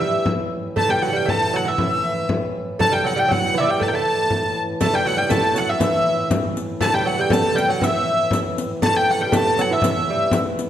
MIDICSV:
0, 0, Header, 1, 6, 480
1, 0, Start_track
1, 0, Tempo, 502934
1, 737, Time_signature, 2, 2, 24, 8
1, 10208, End_track
2, 0, Start_track
2, 0, Title_t, "Hurdy-gurdy"
2, 0, Program_c, 0, 110
2, 0, Note_on_c, 0, 76, 89
2, 255, Note_off_c, 0, 76, 0
2, 743, Note_on_c, 0, 81, 110
2, 863, Note_off_c, 0, 81, 0
2, 863, Note_on_c, 0, 79, 88
2, 978, Note_off_c, 0, 79, 0
2, 978, Note_on_c, 0, 78, 88
2, 1114, Note_off_c, 0, 78, 0
2, 1114, Note_on_c, 0, 79, 87
2, 1234, Note_off_c, 0, 79, 0
2, 1234, Note_on_c, 0, 81, 104
2, 1492, Note_off_c, 0, 81, 0
2, 1492, Note_on_c, 0, 78, 79
2, 1604, Note_off_c, 0, 78, 0
2, 1604, Note_on_c, 0, 76, 80
2, 1723, Note_off_c, 0, 76, 0
2, 1723, Note_on_c, 0, 76, 85
2, 2161, Note_off_c, 0, 76, 0
2, 2676, Note_on_c, 0, 81, 109
2, 2796, Note_off_c, 0, 81, 0
2, 2796, Note_on_c, 0, 79, 94
2, 2924, Note_off_c, 0, 79, 0
2, 2924, Note_on_c, 0, 78, 93
2, 3044, Note_off_c, 0, 78, 0
2, 3044, Note_on_c, 0, 79, 87
2, 3162, Note_off_c, 0, 79, 0
2, 3162, Note_on_c, 0, 78, 99
2, 3416, Note_off_c, 0, 78, 0
2, 3416, Note_on_c, 0, 76, 81
2, 3430, Note_on_c, 0, 74, 67
2, 3454, Note_off_c, 0, 74, 0
2, 3478, Note_off_c, 0, 76, 0
2, 3478, Note_on_c, 0, 76, 80
2, 3533, Note_off_c, 0, 76, 0
2, 3533, Note_on_c, 0, 79, 81
2, 3652, Note_off_c, 0, 79, 0
2, 3652, Note_on_c, 0, 81, 99
2, 3706, Note_off_c, 0, 81, 0
2, 3706, Note_on_c, 0, 79, 75
2, 3770, Note_off_c, 0, 79, 0
2, 3770, Note_on_c, 0, 81, 101
2, 4355, Note_off_c, 0, 81, 0
2, 4591, Note_on_c, 0, 81, 107
2, 4725, Note_off_c, 0, 81, 0
2, 4725, Note_on_c, 0, 79, 95
2, 4838, Note_off_c, 0, 79, 0
2, 4838, Note_on_c, 0, 78, 92
2, 4946, Note_on_c, 0, 79, 97
2, 4953, Note_off_c, 0, 78, 0
2, 5068, Note_off_c, 0, 79, 0
2, 5068, Note_on_c, 0, 81, 104
2, 5324, Note_off_c, 0, 81, 0
2, 5324, Note_on_c, 0, 78, 82
2, 5434, Note_on_c, 0, 76, 81
2, 5437, Note_off_c, 0, 78, 0
2, 5555, Note_off_c, 0, 76, 0
2, 5555, Note_on_c, 0, 76, 85
2, 5998, Note_off_c, 0, 76, 0
2, 6503, Note_on_c, 0, 81, 120
2, 6624, Note_off_c, 0, 81, 0
2, 6624, Note_on_c, 0, 79, 105
2, 6751, Note_off_c, 0, 79, 0
2, 6751, Note_on_c, 0, 78, 91
2, 6880, Note_off_c, 0, 78, 0
2, 6880, Note_on_c, 0, 79, 90
2, 6988, Note_on_c, 0, 81, 107
2, 6993, Note_off_c, 0, 79, 0
2, 7216, Note_on_c, 0, 79, 89
2, 7226, Note_off_c, 0, 81, 0
2, 7351, Note_off_c, 0, 79, 0
2, 7351, Note_on_c, 0, 78, 89
2, 7478, Note_off_c, 0, 78, 0
2, 7478, Note_on_c, 0, 76, 87
2, 7949, Note_off_c, 0, 76, 0
2, 8428, Note_on_c, 0, 81, 112
2, 8559, Note_off_c, 0, 81, 0
2, 8559, Note_on_c, 0, 79, 95
2, 8693, Note_off_c, 0, 79, 0
2, 8693, Note_on_c, 0, 78, 90
2, 8797, Note_off_c, 0, 78, 0
2, 8797, Note_on_c, 0, 79, 87
2, 8932, Note_off_c, 0, 79, 0
2, 8932, Note_on_c, 0, 81, 110
2, 9174, Note_off_c, 0, 81, 0
2, 9174, Note_on_c, 0, 78, 77
2, 9284, Note_off_c, 0, 78, 0
2, 9284, Note_on_c, 0, 76, 79
2, 9405, Note_off_c, 0, 76, 0
2, 9405, Note_on_c, 0, 76, 89
2, 9835, Note_off_c, 0, 76, 0
2, 10208, End_track
3, 0, Start_track
3, 0, Title_t, "Lute"
3, 0, Program_c, 1, 24
3, 0, Note_on_c, 1, 55, 65
3, 229, Note_off_c, 1, 55, 0
3, 726, Note_on_c, 1, 57, 84
3, 846, Note_on_c, 1, 55, 79
3, 856, Note_off_c, 1, 57, 0
3, 968, Note_off_c, 1, 55, 0
3, 972, Note_on_c, 1, 54, 75
3, 1074, Note_off_c, 1, 54, 0
3, 1078, Note_on_c, 1, 55, 74
3, 1198, Note_on_c, 1, 57, 80
3, 1213, Note_off_c, 1, 55, 0
3, 1458, Note_off_c, 1, 57, 0
3, 1465, Note_on_c, 1, 54, 73
3, 1575, Note_on_c, 1, 52, 70
3, 1587, Note_off_c, 1, 54, 0
3, 1691, Note_off_c, 1, 52, 0
3, 1703, Note_on_c, 1, 52, 59
3, 2151, Note_off_c, 1, 52, 0
3, 2666, Note_on_c, 1, 57, 89
3, 2781, Note_on_c, 1, 55, 83
3, 2790, Note_off_c, 1, 57, 0
3, 2899, Note_off_c, 1, 55, 0
3, 2903, Note_on_c, 1, 54, 78
3, 3012, Note_off_c, 1, 54, 0
3, 3016, Note_on_c, 1, 55, 73
3, 3129, Note_off_c, 1, 55, 0
3, 3133, Note_on_c, 1, 54, 85
3, 3378, Note_on_c, 1, 52, 72
3, 3388, Note_off_c, 1, 54, 0
3, 3429, Note_off_c, 1, 52, 0
3, 3437, Note_on_c, 1, 54, 51
3, 3442, Note_on_c, 1, 52, 70
3, 3456, Note_off_c, 1, 54, 0
3, 3500, Note_off_c, 1, 52, 0
3, 3502, Note_on_c, 1, 55, 78
3, 3625, Note_on_c, 1, 57, 74
3, 3629, Note_off_c, 1, 55, 0
3, 3740, Note_off_c, 1, 57, 0
3, 3752, Note_on_c, 1, 57, 75
3, 4308, Note_off_c, 1, 57, 0
3, 4588, Note_on_c, 1, 57, 93
3, 4709, Note_on_c, 1, 55, 82
3, 4712, Note_off_c, 1, 57, 0
3, 4818, Note_off_c, 1, 55, 0
3, 4822, Note_on_c, 1, 54, 83
3, 4930, Note_off_c, 1, 54, 0
3, 4934, Note_on_c, 1, 55, 83
3, 5052, Note_off_c, 1, 55, 0
3, 5053, Note_on_c, 1, 57, 91
3, 5289, Note_on_c, 1, 54, 76
3, 5308, Note_off_c, 1, 57, 0
3, 5530, Note_on_c, 1, 52, 66
3, 5546, Note_off_c, 1, 54, 0
3, 5985, Note_off_c, 1, 52, 0
3, 6495, Note_on_c, 1, 57, 93
3, 6621, Note_on_c, 1, 55, 85
3, 6625, Note_off_c, 1, 57, 0
3, 6728, Note_off_c, 1, 55, 0
3, 6732, Note_on_c, 1, 54, 88
3, 6859, Note_off_c, 1, 54, 0
3, 6862, Note_on_c, 1, 55, 78
3, 6971, Note_on_c, 1, 57, 87
3, 6988, Note_off_c, 1, 55, 0
3, 7207, Note_on_c, 1, 55, 80
3, 7225, Note_off_c, 1, 57, 0
3, 7329, Note_off_c, 1, 55, 0
3, 7332, Note_on_c, 1, 54, 77
3, 7455, Note_on_c, 1, 52, 69
3, 7462, Note_off_c, 1, 54, 0
3, 7904, Note_off_c, 1, 52, 0
3, 8420, Note_on_c, 1, 57, 88
3, 8787, Note_on_c, 1, 55, 77
3, 8789, Note_off_c, 1, 57, 0
3, 8895, Note_on_c, 1, 57, 91
3, 8906, Note_off_c, 1, 55, 0
3, 9142, Note_off_c, 1, 57, 0
3, 9149, Note_on_c, 1, 54, 77
3, 9258, Note_on_c, 1, 52, 72
3, 9265, Note_off_c, 1, 54, 0
3, 9376, Note_off_c, 1, 52, 0
3, 9387, Note_on_c, 1, 52, 74
3, 9627, Note_off_c, 1, 52, 0
3, 9640, Note_on_c, 1, 55, 71
3, 9849, Note_off_c, 1, 55, 0
3, 10208, End_track
4, 0, Start_track
4, 0, Title_t, "Harmonium"
4, 0, Program_c, 2, 20
4, 0, Note_on_c, 2, 45, 60
4, 0, Note_on_c, 2, 52, 64
4, 721, Note_off_c, 2, 52, 0
4, 723, Note_off_c, 2, 45, 0
4, 735, Note_on_c, 2, 52, 61
4, 738, Note_on_c, 2, 45, 63
4, 4567, Note_off_c, 2, 45, 0
4, 4568, Note_off_c, 2, 52, 0
4, 4581, Note_on_c, 2, 45, 69
4, 4583, Note_on_c, 2, 52, 65
4, 8400, Note_off_c, 2, 45, 0
4, 8405, Note_off_c, 2, 52, 0
4, 8414, Note_on_c, 2, 45, 67
4, 8419, Note_on_c, 2, 52, 67
4, 10208, Note_off_c, 2, 45, 0
4, 10208, Note_off_c, 2, 52, 0
4, 10208, End_track
5, 0, Start_track
5, 0, Title_t, "Frame drum"
5, 15, Note_on_c, 9, 64, 27
5, 110, Note_off_c, 9, 64, 0
5, 245, Note_on_c, 9, 64, 81
5, 340, Note_off_c, 9, 64, 0
5, 731, Note_on_c, 9, 64, 71
5, 827, Note_off_c, 9, 64, 0
5, 984, Note_on_c, 9, 64, 22
5, 1079, Note_off_c, 9, 64, 0
5, 1225, Note_on_c, 9, 64, 76
5, 1321, Note_off_c, 9, 64, 0
5, 1461, Note_on_c, 9, 64, 25
5, 1557, Note_off_c, 9, 64, 0
5, 1701, Note_on_c, 9, 64, 75
5, 1796, Note_off_c, 9, 64, 0
5, 1952, Note_on_c, 9, 64, 25
5, 2048, Note_off_c, 9, 64, 0
5, 2186, Note_on_c, 9, 64, 78
5, 2282, Note_off_c, 9, 64, 0
5, 2436, Note_on_c, 9, 64, 25
5, 2531, Note_off_c, 9, 64, 0
5, 2674, Note_on_c, 9, 64, 77
5, 2770, Note_off_c, 9, 64, 0
5, 2920, Note_on_c, 9, 64, 23
5, 3016, Note_off_c, 9, 64, 0
5, 3165, Note_on_c, 9, 64, 71
5, 3260, Note_off_c, 9, 64, 0
5, 3400, Note_on_c, 9, 64, 22
5, 3495, Note_off_c, 9, 64, 0
5, 3639, Note_on_c, 9, 64, 60
5, 3735, Note_off_c, 9, 64, 0
5, 4107, Note_on_c, 9, 64, 70
5, 4203, Note_off_c, 9, 64, 0
5, 4350, Note_on_c, 9, 64, 23
5, 4445, Note_off_c, 9, 64, 0
5, 4594, Note_on_c, 9, 64, 79
5, 4689, Note_off_c, 9, 64, 0
5, 4833, Note_on_c, 9, 64, 26
5, 4929, Note_off_c, 9, 64, 0
5, 5071, Note_on_c, 9, 64, 85
5, 5167, Note_off_c, 9, 64, 0
5, 5302, Note_on_c, 9, 64, 26
5, 5398, Note_off_c, 9, 64, 0
5, 5538, Note_on_c, 9, 64, 75
5, 5633, Note_off_c, 9, 64, 0
5, 6019, Note_on_c, 9, 64, 88
5, 6114, Note_off_c, 9, 64, 0
5, 6258, Note_on_c, 9, 64, 29
5, 6354, Note_off_c, 9, 64, 0
5, 6495, Note_on_c, 9, 64, 92
5, 6591, Note_off_c, 9, 64, 0
5, 6732, Note_on_c, 9, 64, 29
5, 6827, Note_off_c, 9, 64, 0
5, 6969, Note_on_c, 9, 64, 94
5, 7065, Note_off_c, 9, 64, 0
5, 7217, Note_on_c, 9, 64, 25
5, 7313, Note_off_c, 9, 64, 0
5, 7458, Note_on_c, 9, 64, 76
5, 7553, Note_off_c, 9, 64, 0
5, 7929, Note_on_c, 9, 64, 82
5, 8024, Note_off_c, 9, 64, 0
5, 8183, Note_on_c, 9, 64, 29
5, 8279, Note_off_c, 9, 64, 0
5, 8420, Note_on_c, 9, 64, 84
5, 8515, Note_off_c, 9, 64, 0
5, 8667, Note_on_c, 9, 64, 28
5, 8763, Note_off_c, 9, 64, 0
5, 8898, Note_on_c, 9, 64, 86
5, 8993, Note_off_c, 9, 64, 0
5, 9136, Note_on_c, 9, 64, 27
5, 9231, Note_off_c, 9, 64, 0
5, 9369, Note_on_c, 9, 64, 84
5, 9464, Note_off_c, 9, 64, 0
5, 9843, Note_on_c, 9, 64, 88
5, 9939, Note_off_c, 9, 64, 0
5, 10087, Note_on_c, 9, 64, 27
5, 10182, Note_off_c, 9, 64, 0
5, 10208, End_track
6, 0, Start_track
6, 0, Title_t, "Riq"
6, 4587, Note_on_c, 9, 54, 54
6, 4682, Note_off_c, 9, 54, 0
6, 5061, Note_on_c, 9, 54, 60
6, 5156, Note_off_c, 9, 54, 0
6, 5306, Note_on_c, 9, 54, 47
6, 5401, Note_off_c, 9, 54, 0
6, 5543, Note_on_c, 9, 54, 69
6, 5638, Note_off_c, 9, 54, 0
6, 6021, Note_on_c, 9, 54, 61
6, 6117, Note_off_c, 9, 54, 0
6, 6270, Note_on_c, 9, 54, 51
6, 6365, Note_off_c, 9, 54, 0
6, 6512, Note_on_c, 9, 54, 61
6, 6607, Note_off_c, 9, 54, 0
6, 6997, Note_on_c, 9, 54, 60
6, 7093, Note_off_c, 9, 54, 0
6, 7238, Note_on_c, 9, 54, 53
6, 7333, Note_off_c, 9, 54, 0
6, 7479, Note_on_c, 9, 54, 67
6, 7575, Note_off_c, 9, 54, 0
6, 7953, Note_on_c, 9, 54, 63
6, 8048, Note_off_c, 9, 54, 0
6, 8191, Note_on_c, 9, 54, 57
6, 8286, Note_off_c, 9, 54, 0
6, 8427, Note_on_c, 9, 54, 71
6, 8523, Note_off_c, 9, 54, 0
6, 8908, Note_on_c, 9, 54, 72
6, 9003, Note_off_c, 9, 54, 0
6, 9151, Note_on_c, 9, 54, 56
6, 9247, Note_off_c, 9, 54, 0
6, 9391, Note_on_c, 9, 54, 78
6, 9486, Note_off_c, 9, 54, 0
6, 9857, Note_on_c, 9, 54, 71
6, 9953, Note_off_c, 9, 54, 0
6, 10105, Note_on_c, 9, 54, 56
6, 10200, Note_off_c, 9, 54, 0
6, 10208, End_track
0, 0, End_of_file